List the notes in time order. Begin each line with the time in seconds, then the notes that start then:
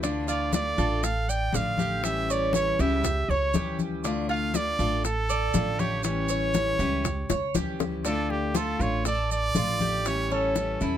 Already playing: D2
0.03 D3 A3 D4 F4, high bongo, high conga, maracas
0.28 F4 D5, high bongo, high conga, maracas
0.53 D3 A3 D4 F4 D5, high bongo, high conga, maracas
0.78 A1 A3 D4 F4 A4, high bongo, high conga, maracas
1.03 F5, muted steel-string acoustic guitar stroke, high bongo, high conga, maracas
1.28 D5 G5, high conga, maracas
1.53 A1 D3 A3 D4 F4 F5, high bongo, low bongo, high conga, maracas
1.78 G4, high bongo, high conga, maracas
2.03 E3 G3 C#4 E4 E5, high bongo, high conga, maracas
2.28 C#5, high bongo, high conga, maracas
2.32 D5
2.53 E3 G3 C#4 E4 C#5, high bongo, high conga, maracas
2.78 C#2 G3 C#4 E4 G4 E5, high bongo, high conga, maracas
3.04 muted steel-string acoustic guitar stroke, high bongo, high conga, low conga, maracas
3.29 C#2 C#5, high conga, low conga
3.54 D2 E3 G3 C#4 E4 G4, high bongo, low bongo, high conga, maracas
3.79 high bongo, high conga, maracas
4.04 D3 A3 D4 F4, high bongo, high conga, maracas
4.29 F4 F5, high bongo, high conga
4.54 D3 A3 D4 F4 D5, high bongo, high conga, maracas
4.79 A1 A3 D4 F4 A4, high bongo, high conga, maracas
5.04 A4, muted steel-string acoustic guitar stroke, high bongo, high conga, maracas
5.29 D5, high conga, maracas
5.54 A1 D3 A3 D4 F4, high bongo, low bongo, high conga, maracas
5.79 G4 C#5, high bongo, high conga, maracas
6.03 E3 G3 C#4 E4 C#5, high bongo, high conga, maracas
6.29 C#5, high bongo, high conga, maracas
6.54 E3 G3 C#4 E4, high bongo, high conga, maracas
6.79 C#2 G3 C#4 E4 G4, high bongo, high conga, maracas
7.04 muted steel-string acoustic guitar stroke, high bongo, high conga, low conga, maracas
7.30 C#2 C#5, high bongo, high conga, low conga, maracas
7.54 D2 E3 G3 C#4 E4 G4, high bongo, high conga, maracas
7.80 low bongo, high conga, maracas
8.05 D3 A3 D4 F4 A4, high bongo, maracas
8.30 G4, high bongo, high conga
8.54 D3 A3 D4 F4 A4, high bongo, high conga, maracas
8.79 A1 A3 D4 F4 C#5, high bongo, high conga, maracas
9.04 A4 D5, muted steel-string acoustic guitar stroke, high bongo, high conga, maracas
9.31 D5, high conga, maracas
9.55 A1 D3 A3 D4 F4, high bongo, low bongo, high conga, maracas
9.80 G4, high bongo, high conga, maracas
10.05 E3 G3 C#4 E4 C#5, high bongo, high conga, maracas
10.30 C#4 A4, high bongo, high conga
10.55 E3 G3 C#4 E4, high bongo, high conga, maracas
10.81 E2 G3 C#4 E4, high bongo, high conga, maracas